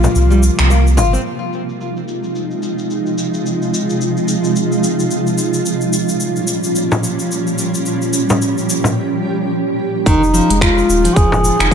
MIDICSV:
0, 0, Header, 1, 7, 480
1, 0, Start_track
1, 0, Key_signature, -4, "minor"
1, 0, Tempo, 550459
1, 1094, Time_signature, 4, 2, 24, 8
1, 10238, End_track
2, 0, Start_track
2, 0, Title_t, "Duduk"
2, 0, Program_c, 0, 69
2, 0, Note_on_c, 0, 65, 112
2, 617, Note_off_c, 0, 65, 0
2, 8777, Note_on_c, 0, 63, 109
2, 9222, Note_off_c, 0, 63, 0
2, 9256, Note_on_c, 0, 65, 98
2, 9729, Note_on_c, 0, 68, 103
2, 9742, Note_off_c, 0, 65, 0
2, 10199, Note_off_c, 0, 68, 0
2, 10204, Note_on_c, 0, 68, 104
2, 10238, Note_off_c, 0, 68, 0
2, 10238, End_track
3, 0, Start_track
3, 0, Title_t, "Ambient pad"
3, 0, Program_c, 1, 92
3, 0, Note_on_c, 1, 48, 70
3, 0, Note_on_c, 1, 53, 64
3, 0, Note_on_c, 1, 55, 67
3, 0, Note_on_c, 1, 58, 70
3, 0, Note_on_c, 1, 65, 80
3, 1055, Note_off_c, 1, 58, 0
3, 1055, Note_off_c, 1, 65, 0
3, 1056, Note_off_c, 1, 48, 0
3, 1056, Note_off_c, 1, 55, 0
3, 1061, Note_off_c, 1, 53, 0
3, 1095, Note_on_c, 1, 53, 64
3, 1097, Note_on_c, 1, 56, 68
3, 1100, Note_on_c, 1, 48, 67
3, 1101, Note_on_c, 1, 63, 67
3, 1101, Note_on_c, 1, 65, 81
3, 4900, Note_off_c, 1, 53, 0
3, 4901, Note_off_c, 1, 56, 0
3, 4902, Note_off_c, 1, 48, 0
3, 4903, Note_off_c, 1, 63, 0
3, 4933, Note_on_c, 1, 61, 67
3, 4934, Note_on_c, 1, 53, 66
3, 4936, Note_on_c, 1, 46, 73
3, 4936, Note_on_c, 1, 55, 64
3, 6823, Note_off_c, 1, 65, 0
3, 6847, Note_on_c, 1, 67, 81
3, 8739, Note_off_c, 1, 53, 0
3, 8739, Note_off_c, 1, 61, 0
3, 8740, Note_off_c, 1, 46, 0
3, 8740, Note_off_c, 1, 55, 0
3, 8752, Note_off_c, 1, 67, 0
3, 8759, Note_on_c, 1, 65, 87
3, 8763, Note_on_c, 1, 56, 70
3, 8765, Note_on_c, 1, 48, 76
3, 8765, Note_on_c, 1, 63, 70
3, 8767, Note_on_c, 1, 53, 67
3, 10238, Note_off_c, 1, 48, 0
3, 10238, Note_off_c, 1, 53, 0
3, 10238, Note_off_c, 1, 56, 0
3, 10238, Note_off_c, 1, 63, 0
3, 10238, Note_off_c, 1, 65, 0
3, 10238, End_track
4, 0, Start_track
4, 0, Title_t, "Nylon-string guitar"
4, 0, Program_c, 2, 24
4, 265, Note_on_c, 2, 55, 71
4, 365, Note_off_c, 2, 55, 0
4, 611, Note_on_c, 2, 58, 83
4, 744, Note_off_c, 2, 58, 0
4, 847, Note_on_c, 2, 65, 98
4, 975, Note_off_c, 2, 65, 0
4, 985, Note_on_c, 2, 60, 79
4, 1047, Note_off_c, 2, 60, 0
4, 8773, Note_on_c, 2, 51, 100
4, 8905, Note_off_c, 2, 51, 0
4, 9012, Note_on_c, 2, 53, 72
4, 9138, Note_off_c, 2, 53, 0
4, 9151, Note_on_c, 2, 56, 78
4, 9618, Note_off_c, 2, 56, 0
4, 9630, Note_on_c, 2, 53, 75
4, 10097, Note_off_c, 2, 53, 0
4, 10108, Note_on_c, 2, 51, 74
4, 10202, Note_off_c, 2, 51, 0
4, 10238, End_track
5, 0, Start_track
5, 0, Title_t, "Sub bass"
5, 0, Program_c, 3, 38
5, 132, Note_on_c, 3, 36, 85
5, 434, Note_off_c, 3, 36, 0
5, 512, Note_on_c, 3, 36, 84
5, 851, Note_on_c, 3, 31, 92
5, 864, Note_off_c, 3, 36, 0
5, 1021, Note_off_c, 3, 31, 0
5, 8774, Note_on_c, 3, 29, 103
5, 9075, Note_off_c, 3, 29, 0
5, 9151, Note_on_c, 3, 29, 80
5, 9436, Note_off_c, 3, 29, 0
5, 9492, Note_on_c, 3, 27, 91
5, 9661, Note_off_c, 3, 27, 0
5, 9735, Note_on_c, 3, 29, 84
5, 10035, Note_off_c, 3, 29, 0
5, 10108, Note_on_c, 3, 29, 82
5, 10238, Note_off_c, 3, 29, 0
5, 10238, End_track
6, 0, Start_track
6, 0, Title_t, "Frame drum"
6, 33, Note_on_c, 9, 64, 75
6, 120, Note_off_c, 9, 64, 0
6, 851, Note_on_c, 9, 64, 84
6, 938, Note_off_c, 9, 64, 0
6, 6032, Note_on_c, 9, 64, 85
6, 6119, Note_off_c, 9, 64, 0
6, 7238, Note_on_c, 9, 64, 80
6, 7325, Note_off_c, 9, 64, 0
6, 7709, Note_on_c, 9, 64, 77
6, 7796, Note_off_c, 9, 64, 0
6, 9872, Note_on_c, 9, 64, 97
6, 9959, Note_off_c, 9, 64, 0
6, 10238, End_track
7, 0, Start_track
7, 0, Title_t, "Drums"
7, 32, Note_on_c, 9, 82, 30
7, 119, Note_off_c, 9, 82, 0
7, 134, Note_on_c, 9, 82, 42
7, 221, Note_off_c, 9, 82, 0
7, 273, Note_on_c, 9, 82, 22
7, 360, Note_off_c, 9, 82, 0
7, 375, Note_on_c, 9, 82, 71
7, 462, Note_off_c, 9, 82, 0
7, 511, Note_on_c, 9, 26, 85
7, 514, Note_on_c, 9, 82, 33
7, 599, Note_off_c, 9, 26, 0
7, 602, Note_off_c, 9, 82, 0
7, 616, Note_on_c, 9, 82, 40
7, 703, Note_off_c, 9, 82, 0
7, 759, Note_on_c, 9, 82, 22
7, 846, Note_off_c, 9, 82, 0
7, 855, Note_on_c, 9, 82, 75
7, 942, Note_off_c, 9, 82, 0
7, 994, Note_on_c, 9, 82, 33
7, 1081, Note_off_c, 9, 82, 0
7, 1096, Note_on_c, 9, 82, 39
7, 1184, Note_off_c, 9, 82, 0
7, 1236, Note_on_c, 9, 82, 18
7, 1323, Note_off_c, 9, 82, 0
7, 1333, Note_on_c, 9, 82, 68
7, 1420, Note_off_c, 9, 82, 0
7, 1474, Note_on_c, 9, 82, 29
7, 1561, Note_off_c, 9, 82, 0
7, 1576, Note_on_c, 9, 82, 39
7, 1663, Note_off_c, 9, 82, 0
7, 1714, Note_on_c, 9, 82, 19
7, 1801, Note_off_c, 9, 82, 0
7, 1813, Note_on_c, 9, 82, 66
7, 1900, Note_off_c, 9, 82, 0
7, 1950, Note_on_c, 9, 82, 28
7, 2037, Note_off_c, 9, 82, 0
7, 2049, Note_on_c, 9, 82, 38
7, 2137, Note_off_c, 9, 82, 0
7, 2187, Note_on_c, 9, 82, 19
7, 2274, Note_off_c, 9, 82, 0
7, 2289, Note_on_c, 9, 82, 69
7, 2376, Note_off_c, 9, 82, 0
7, 2428, Note_on_c, 9, 82, 30
7, 2515, Note_off_c, 9, 82, 0
7, 2531, Note_on_c, 9, 82, 35
7, 2619, Note_off_c, 9, 82, 0
7, 2671, Note_on_c, 9, 82, 18
7, 2759, Note_off_c, 9, 82, 0
7, 2773, Note_on_c, 9, 82, 68
7, 2860, Note_off_c, 9, 82, 0
7, 2911, Note_on_c, 9, 82, 31
7, 2998, Note_off_c, 9, 82, 0
7, 3018, Note_on_c, 9, 82, 42
7, 3105, Note_off_c, 9, 82, 0
7, 3157, Note_on_c, 9, 82, 21
7, 3245, Note_off_c, 9, 82, 0
7, 3261, Note_on_c, 9, 82, 70
7, 3349, Note_off_c, 9, 82, 0
7, 3397, Note_on_c, 9, 82, 30
7, 3484, Note_off_c, 9, 82, 0
7, 3497, Note_on_c, 9, 82, 40
7, 3585, Note_off_c, 9, 82, 0
7, 3637, Note_on_c, 9, 82, 20
7, 3724, Note_off_c, 9, 82, 0
7, 3733, Note_on_c, 9, 82, 73
7, 3820, Note_off_c, 9, 82, 0
7, 3874, Note_on_c, 9, 82, 29
7, 3961, Note_off_c, 9, 82, 0
7, 3975, Note_on_c, 9, 82, 38
7, 4062, Note_off_c, 9, 82, 0
7, 4115, Note_on_c, 9, 82, 20
7, 4203, Note_off_c, 9, 82, 0
7, 4216, Note_on_c, 9, 82, 72
7, 4303, Note_off_c, 9, 82, 0
7, 4356, Note_on_c, 9, 82, 30
7, 4443, Note_off_c, 9, 82, 0
7, 4453, Note_on_c, 9, 82, 40
7, 4541, Note_off_c, 9, 82, 0
7, 4594, Note_on_c, 9, 82, 18
7, 4681, Note_off_c, 9, 82, 0
7, 4691, Note_on_c, 9, 82, 70
7, 4778, Note_off_c, 9, 82, 0
7, 4828, Note_on_c, 9, 82, 33
7, 4915, Note_off_c, 9, 82, 0
7, 4932, Note_on_c, 9, 82, 41
7, 5019, Note_off_c, 9, 82, 0
7, 5067, Note_on_c, 9, 82, 21
7, 5154, Note_off_c, 9, 82, 0
7, 5171, Note_on_c, 9, 82, 74
7, 5258, Note_off_c, 9, 82, 0
7, 5307, Note_on_c, 9, 82, 33
7, 5394, Note_off_c, 9, 82, 0
7, 5408, Note_on_c, 9, 82, 40
7, 5495, Note_off_c, 9, 82, 0
7, 5547, Note_on_c, 9, 82, 20
7, 5634, Note_off_c, 9, 82, 0
7, 5645, Note_on_c, 9, 82, 77
7, 5732, Note_off_c, 9, 82, 0
7, 5785, Note_on_c, 9, 82, 32
7, 5873, Note_off_c, 9, 82, 0
7, 5890, Note_on_c, 9, 82, 41
7, 5977, Note_off_c, 9, 82, 0
7, 6033, Note_on_c, 9, 82, 20
7, 6120, Note_off_c, 9, 82, 0
7, 6136, Note_on_c, 9, 82, 77
7, 6223, Note_off_c, 9, 82, 0
7, 6271, Note_on_c, 9, 82, 31
7, 6358, Note_off_c, 9, 82, 0
7, 6379, Note_on_c, 9, 82, 42
7, 6466, Note_off_c, 9, 82, 0
7, 6514, Note_on_c, 9, 82, 20
7, 6601, Note_off_c, 9, 82, 0
7, 6613, Note_on_c, 9, 82, 78
7, 6700, Note_off_c, 9, 82, 0
7, 6752, Note_on_c, 9, 82, 33
7, 6839, Note_off_c, 9, 82, 0
7, 6851, Note_on_c, 9, 82, 43
7, 6938, Note_off_c, 9, 82, 0
7, 6991, Note_on_c, 9, 82, 22
7, 7078, Note_off_c, 9, 82, 0
7, 7092, Note_on_c, 9, 82, 76
7, 7179, Note_off_c, 9, 82, 0
7, 7234, Note_on_c, 9, 82, 33
7, 7321, Note_off_c, 9, 82, 0
7, 7340, Note_on_c, 9, 82, 42
7, 7427, Note_off_c, 9, 82, 0
7, 7479, Note_on_c, 9, 82, 20
7, 7566, Note_off_c, 9, 82, 0
7, 7583, Note_on_c, 9, 82, 76
7, 7670, Note_off_c, 9, 82, 0
7, 7719, Note_on_c, 9, 82, 31
7, 7806, Note_off_c, 9, 82, 0
7, 8775, Note_on_c, 9, 36, 101
7, 8779, Note_on_c, 9, 42, 47
7, 8782, Note_on_c, 9, 82, 47
7, 8862, Note_off_c, 9, 36, 0
7, 8866, Note_off_c, 9, 42, 0
7, 8869, Note_off_c, 9, 82, 0
7, 8923, Note_on_c, 9, 82, 22
7, 9010, Note_off_c, 9, 82, 0
7, 9021, Note_on_c, 9, 82, 81
7, 9109, Note_off_c, 9, 82, 0
7, 9160, Note_on_c, 9, 42, 63
7, 9163, Note_on_c, 9, 82, 35
7, 9247, Note_off_c, 9, 42, 0
7, 9250, Note_off_c, 9, 82, 0
7, 9255, Note_on_c, 9, 36, 104
7, 9260, Note_on_c, 9, 26, 76
7, 9260, Note_on_c, 9, 42, 47
7, 9263, Note_on_c, 9, 82, 44
7, 9342, Note_off_c, 9, 36, 0
7, 9347, Note_off_c, 9, 26, 0
7, 9347, Note_off_c, 9, 42, 0
7, 9350, Note_off_c, 9, 82, 0
7, 9401, Note_on_c, 9, 82, 23
7, 9488, Note_off_c, 9, 82, 0
7, 9503, Note_on_c, 9, 82, 78
7, 9590, Note_off_c, 9, 82, 0
7, 9636, Note_on_c, 9, 42, 60
7, 9640, Note_on_c, 9, 82, 33
7, 9724, Note_off_c, 9, 42, 0
7, 9727, Note_off_c, 9, 82, 0
7, 9735, Note_on_c, 9, 36, 105
7, 9735, Note_on_c, 9, 42, 43
7, 9738, Note_on_c, 9, 82, 43
7, 9822, Note_off_c, 9, 36, 0
7, 9822, Note_off_c, 9, 42, 0
7, 9825, Note_off_c, 9, 82, 0
7, 9881, Note_on_c, 9, 82, 22
7, 9968, Note_off_c, 9, 82, 0
7, 9980, Note_on_c, 9, 82, 82
7, 10068, Note_off_c, 9, 82, 0
7, 10118, Note_on_c, 9, 26, 89
7, 10118, Note_on_c, 9, 42, 56
7, 10121, Note_on_c, 9, 82, 35
7, 10205, Note_off_c, 9, 26, 0
7, 10205, Note_off_c, 9, 42, 0
7, 10208, Note_off_c, 9, 82, 0
7, 10238, End_track
0, 0, End_of_file